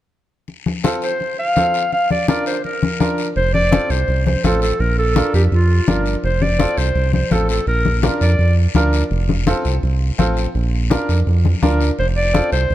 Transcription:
0.48 high conga soft
0.48 long guiro medium
0.66 high conga medium
0.84 1.09 C4 medium
0.84 1.09 F4 medium
0.84 1.10 A4 medium
0.84 high conga medium
0.84 short guiro medium
1.02 1.36 C5 medium
1.02 short guiro medium
1.20 high conga soft
1.20 long guiro medium
1.39 1.89 F5 medium
1.56 1.81 C4 medium
1.56 1.81 F4 medium
1.56 1.82 A4 medium
1.56 high conga medium
1.56 short guiro medium
1.74 short guiro medium
1.92 2.10 F5 loud
1.92 high conga soft
1.92 long guiro medium
2.11 2.28 D5 medium
2.11 high conga medium
2.28 2.53 D4 medium
2.28 2.54 F4 medium
2.28 2.54 A#4 medium
2.28 2.45 D5 medium
2.28 high conga medium
2.28 short guiro medium
2.46 2.63 C5 medium
2.46 short guiro medium
2.64 3.15 A#4 medium
2.64 high conga soft
2.64 long guiro medium
2.83 high conga medium
3.00 3.25 D4 medium
3.00 3.25 F4 soft
3.00 3.25 A#4 medium
3.00 high conga medium
3.00 short guiro medium
3.18 short guiro medium
3.36 3.79 F1 loud
3.36 3.53 C5 loud
3.36 high conga soft
3.36 long guiro medium
3.54 3.92 D5 loud
3.54 high conga medium
3.71 3.97 C4 medium
3.71 3.97 F4 medium
3.71 3.97 A4 medium
3.71 high conga medium
3.71 short guiro medium
3.90 4.04 C2 loud
3.90 4.26 C5 medium
3.90 short guiro medium
4.08 4.37 C2 medium
4.08 high conga soft
4.08 long guiro medium
4.26 4.46 C5 medium
4.26 high conga medium
4.44 4.73 A1 medium
4.44 4.69 C4 medium
4.44 4.70 F4 medium
4.44 4.62 A4 medium
4.44 4.70 A4 medium
4.44 high conga medium
4.44 short guiro medium
4.62 4.82 A4 medium
4.62 short guiro medium
4.80 5.23 A#1 loud
4.80 4.98 A#4 medium
4.80 high conga soft
4.80 long guiro medium
4.98 5.32 A4 medium
5.16 5.41 D4 medium
5.16 5.41 F4 medium
5.16 5.41 A#4 medium
5.16 high conga medium
5.16 short guiro medium
5.34 5.48 F2 loud
5.34 5.43 G4 medium
5.34 short guiro medium
5.52 5.81 F2 loud
5.52 6.03 F4 medium
5.52 high conga soft
5.52 long guiro medium
5.88 6.17 G1 medium
5.88 6.13 D4 medium
5.88 6.13 F4 medium
5.88 6.13 A#4 medium
5.88 high conga medium
5.88 short guiro medium
6.06 short guiro medium
6.23 6.67 F1 loud
6.23 6.44 C5 medium
6.23 high conga soft
6.23 long guiro medium
6.42 6.79 D5 medium
6.42 high conga medium
6.59 6.84 C4 medium
6.59 6.85 F4 medium
6.59 6.85 A4 medium
6.59 high conga medium
6.59 short guiro medium
6.77 6.92 C2 medium
6.77 7.14 C5 medium
6.77 short guiro medium
6.95 7.24 C2 loud
6.95 high conga soft
6.95 long guiro medium
7.13 7.33 C5 medium
7.13 high conga medium
7.31 7.60 A1 medium
7.31 7.56 C4 medium
7.31 7.57 F4 medium
7.31 7.49 A4 medium
7.31 7.57 A4 medium
7.31 high conga medium
7.31 short guiro medium
7.49 7.66 A4 medium
7.49 short guiro medium
7.67 8.10 A#1 loud
7.67 8.01 A#4 medium
7.67 high conga soft
7.67 long guiro medium
7.85 high conga medium
8.03 8.28 D4 medium
8.03 8.28 F4 medium
8.03 8.29 A#4 medium
8.03 high conga medium
8.03 short guiro medium
8.21 8.35 F2 loud
8.21 8.55 D5 medium
8.21 short guiro medium
8.39 8.68 F2 medium
8.39 high conga soft
8.39 long guiro medium
8.75 9.03 D2 medium
8.75 9.00 D4 medium
8.75 9.01 F4 medium
8.75 9.01 A#4 medium
8.75 high conga medium
8.75 short guiro medium
8.93 short guiro medium
9.11 9.54 F1 loud
9.11 high conga soft
9.11 long guiro medium
9.29 high conga medium
9.47 9.72 C4 medium
9.47 9.72 F4 medium
9.47 9.72 A4 medium
9.47 high conga medium
9.47 short guiro medium
9.65 9.79 C2 medium
9.65 short guiro medium
9.83 10.12 C2 loud
9.83 high conga soft
9.83 long guiro medium
10.18 10.47 A1 medium
10.18 10.44 C4 medium
10.18 10.44 F4 medium
10.18 10.44 A4 medium
10.18 high conga medium
10.18 short guiro medium
10.37 short guiro medium
10.55 10.98 A#1 loud
10.55 high conga soft
10.55 long guiro medium
10.90 11.15 D4 medium
10.90 11.16 F4 medium
10.90 11.16 A#4 medium
10.90 high conga medium
10.90 short guiro medium
11.09 11.23 F2 loud
11.09 short guiro medium
11.27 11.55 F2 loud
11.27 high conga soft
11.27 long guiro medium
11.45 high conga medium
11.62 11.91 D2 medium
11.62 11.87 D4 medium
11.62 11.88 F4 medium
11.62 11.88 A#4 medium
11.62 high conga medium
11.62 short guiro medium
11.81 short guiro medium
11.99 12.42 F1 loud
11.99 12.07 C5 medium
11.99 high conga soft
11.99 long guiro medium
12.17 12.50 D5 loud
12.34 12.59 C4 medium
12.34 12.59 F4 medium
12.34 12.59 A4 medium
12.34 high conga medium
12.34 short guiro medium
12.52 12.66 C2 loud
12.52 12.75 C5 medium
12.52 short guiro medium
12.70 12.75 C2 medium
12.70 high conga soft
12.70 long guiro medium

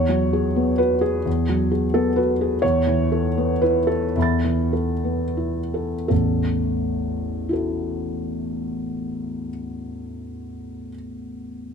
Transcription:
0.00 1.22 E2 soft
0.00 0.79 C#5 medium
0.09 0.47 F#3 soft
0.33 0.71 G#4 soft
0.56 0.93 B3 soft
0.78 1.17 F#4 soft
0.78 1.02 B4 medium
1.01 1.70 G#4 medium
1.26 2.58 E2 soft
1.49 1.85 F#3 soft
1.71 2.08 G#4 soft
1.94 2.31 B3 soft
1.94 2.17 A4 medium
2.16 2.54 F#4 soft
2.16 2.62 B4 medium
2.41 2.63 G#4 soft
2.62 4.11 E2 soft
2.62 3.61 C#5 medium
2.87 3.26 E3 soft
3.12 3.52 A4 soft
3.38 3.78 B3 soft
3.62 4.05 E4 soft
3.62 3.88 B4 medium
3.87 4.71 A4 medium
4.16 6.07 E2 soft
4.16 6.06 E5 soft
4.16 6.08 B5 soft
4.22 6.09 A6 soft
4.44 4.92 E3 soft
4.73 5.24 A4 soft
5.04 5.59 B3 soft
5.37 5.95 E4 soft
5.74 6.07 A4 soft
6.08 9.50 A1 soft
6.08 9.50 E2 soft
6.08 7.52 A4 soft
7.49 10.89 E4 soft
7.49 10.91 F#4 soft
7.53 10.93 A4 soft

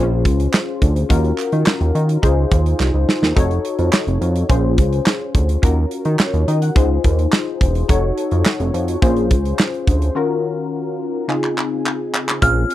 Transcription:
0.00 0.27 A#1 loud
0.00 1.08 C#4 medium
0.00 1.08 F4 medium
0.00 1.08 G#4 medium
0.00 1.08 C5 medium
0.25 0.48 C#2 medium
0.25 kick loud
0.25 closed hi-hat medium
0.40 closed hi-hat soft
0.53 snare loud
0.53 clap medium
0.82 1.04 D2 medium
0.82 kick medium
0.82 closed hi-hat medium
0.96 closed hi-hat medium
1.09 1.33 D#2 loud
1.09 2.21 C#4 medium
1.09 2.21 F4 medium
1.09 2.21 F#4 medium
1.09 2.21 A#4 medium
1.09 kick loud
1.09 closed hi-hat medium
1.24 closed hi-hat soft
1.38 clap medium
1.38 closed hi-hat medium
1.52 1.64 D#3 medium
1.52 closed hi-hat soft
1.66 snare loud
1.66 clap medium
1.81 1.92 D#2 loud
1.81 closed hi-hat soft
1.95 2.18 D#3 medium
1.95 closed hi-hat medium
2.09 closed hi-hat medium
2.22 2.46 C#2 medium
2.22 3.34 D#4 medium
2.22 3.34 F4 medium
2.22 3.34 G#4 medium
2.22 3.35 C5 medium
2.22 kick loud
2.22 closed hi-hat medium
2.51 2.74 D#2 medium
2.51 kick medium
2.51 closed hi-hat medium
2.66 closed hi-hat medium
2.80 2.91 C2 medium
2.80 snare medium
2.80 clap loud
2.94 3.05 C#2 medium
3.09 snare medium
3.22 3.34 D#2 medium
3.22 snare medium
3.36 3.59 F1 loud
3.36 4.47 D#4 medium
3.36 4.47 F#4 medium
3.36 4.48 A4 medium
3.36 4.48 C#5 medium
3.36 kick loud
3.36 closed hi-hat medium
3.51 closed hi-hat soft
3.65 closed hi-hat medium
3.79 3.90 F2 medium
3.79 closed hi-hat soft
3.93 snare loud
3.93 clap medium
4.07 4.18 F1 medium
4.07 closed hi-hat soft
4.21 4.44 F2 medium
4.21 closed hi-hat medium
4.36 closed hi-hat medium
4.49 4.80 A#1 loud
4.49 5.60 C#4 medium
4.49 5.61 F4 medium
4.49 5.61 G#4 medium
4.49 5.61 C5 medium
4.49 kick loud
4.49 closed hi-hat medium
4.78 5.01 C#2 medium
4.78 kick medium
4.78 closed hi-hat medium
4.93 closed hi-hat medium
5.06 snare loud
5.06 clap medium
5.35 5.57 D2 medium
5.35 kick medium
5.35 closed hi-hat medium
5.49 closed hi-hat medium
5.62 5.85 D#2 loud
5.62 6.73 C#4 medium
5.62 6.74 F4 medium
5.62 6.74 F#4 medium
5.62 6.74 A#4 medium
5.62 kick loud
5.62 closed hi-hat medium
5.91 closed hi-hat medium
6.05 6.17 D#3 loud
6.05 closed hi-hat soft
6.19 6.46 C#5 medium
6.19 snare loud
6.19 clap medium
6.34 6.45 D#2 medium
6.34 closed hi-hat soft
6.48 6.70 D#3 medium
6.48 6.61 D#5 medium
6.48 closed hi-hat medium
6.62 6.89 F#5 medium
6.62 closed hi-hat medium
6.75 6.98 C#2 loud
6.75 7.87 D#4 medium
6.75 7.87 F4 medium
6.75 7.87 G#4 medium
6.75 7.87 C5 medium
6.75 kick loud
6.75 closed hi-hat medium
7.04 7.27 D#2 medium
7.04 kick medium
7.04 closed hi-hat medium
7.19 closed hi-hat medium
7.32 snare loud
7.32 clap medium
7.32 clap loud
7.61 7.84 E1 loud
7.61 kick medium
7.61 closed hi-hat medium
7.75 closed hi-hat medium
7.88 8.12 F1 loud
7.88 9.00 D#4 medium
7.88 9.00 F#4 medium
7.88 9.00 A4 medium
7.88 9.01 C#5 medium
7.88 kick loud
7.88 closed hi-hat medium
8.18 closed hi-hat medium
8.31 8.43 F2 medium
8.31 closed hi-hat soft
8.45 snare loud
8.45 clap medium
8.60 8.71 F1 loud
8.60 closed hi-hat soft
8.74 8.97 F2 medium
8.74 closed hi-hat medium
8.88 closed hi-hat medium
9.02 9.32 A#1 loud
9.02 10.13 C#4 medium
9.02 10.13 F4 medium
9.02 10.14 G#4 medium
9.02 10.14 C5 medium
9.02 kick loud
9.02 closed hi-hat medium
9.17 closed hi-hat soft
9.31 9.53 C#2 medium
9.31 kick loud
9.31 closed hi-hat medium
9.45 closed hi-hat medium
9.59 snare loud
9.59 clap medium
9.74 closed hi-hat soft
9.87 10.10 D2 medium
9.87 kick medium
9.87 closed hi-hat medium
10.02 closed hi-hat medium
10.15 11.26 D#3 medium
10.15 11.26 C#4 medium
10.15 11.27 F4 medium
10.15 11.27 F#4 medium
10.15 11.27 A#4 medium
11.28 12.39 C#3 medium
11.28 12.40 C4 medium
11.28 12.40 D#4 medium
11.28 12.40 F4 medium
11.28 12.40 G#4 medium
11.28 clap medium
11.44 clap medium
11.58 clap medium
11.86 clap medium
12.14 clap loud
12.29 clap medium
12.41 12.65 A#1 loud
12.41 12.74 C4 medium
12.41 12.74 C#4 medium
12.41 12.74 F4 medium
12.41 12.74 G#4 medium
12.41 12.74 F6 loud
12.41 kick loud
12.41 closed hi-hat medium
12.70 closed hi-hat medium

